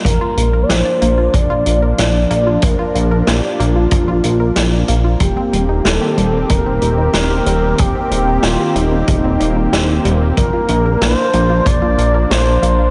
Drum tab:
HH |xxxxxxxx|xxxxxxxx|xxxxxxxx|xxxxxxxx|
SD |--o---o-|--o---o-|--o---o-|--o---o-|
BD |o---o---|o---o---|o---o---|o---o---|

HH |xxxxxxxx|
SD |--o---o-|
BD |o---o---|